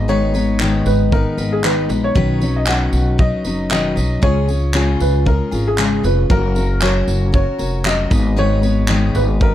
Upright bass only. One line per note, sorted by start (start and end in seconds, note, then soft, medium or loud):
0.00 0.82 G#1 loud
0.86 1.23 G#1 loud
1.38 1.85 G#1 medium
1.89 2.13 A#1 loud
2.16 2.89 B1 loud
2.93 3.30 B1 loud
3.45 3.93 F#1 medium
3.97 4.21 B1 loud
4.23 4.96 C#2 loud
5.01 5.37 C#2 loud
5.52 6.00 G#1 medium
6.04 6.28 F1 loud
6.30 7.04 F#1 loud
7.08 7.44 F#1 medium
7.59 8.07 F1 medium
8.11 9.11 G#1 loud
9.15 9.52 G#1 loud